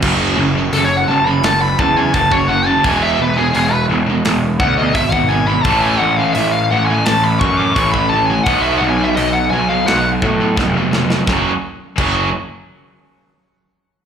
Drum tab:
CC |x---------------|----------------|----------------|----------------|
HH |----o---o---o---|o---o---o---o---|o---o---o---o---|o---o---o-------|
SD |--------o-------|--------o-------|--------o-------|--------o---o-oo|
BD |o---------o-oo--|o---------o-oo--|o---------o-oo--|o---------o-o---|

CC |----x-----------|
HH |----------------|
SD |o---------------|
BD |o---o-----------|